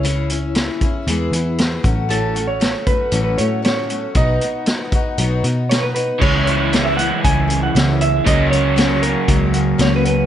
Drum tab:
CC |--------|--------|--------|x-------|
HH |xxxxxxxx|xxxxxxxx|xxxxxxxx|-xxxxxxx|
SD |--o---o-|--o---o-|--o---o-|--o---o-|
BD |---o---o|---o----|o--o----|o---o---|

CC |--------|
HH |xxxxxxxx|
SD |--o---o-|
BD |o---o---|